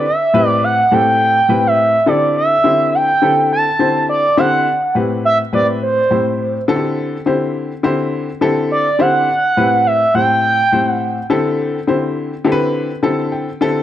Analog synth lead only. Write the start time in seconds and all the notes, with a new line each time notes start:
0.07 E5
0.48 D5
0.64 F#5
0.93 G5
1.67 E5
2.08 D5
2.37 E5
2.95 G5
3.53 A5
4.09 D5
4.39 F#5
5.25 E5
5.54 D5
5.83 C5
8.71 D5
9.01 F#5
9.87 E5
10.15 G5
10.88 F#5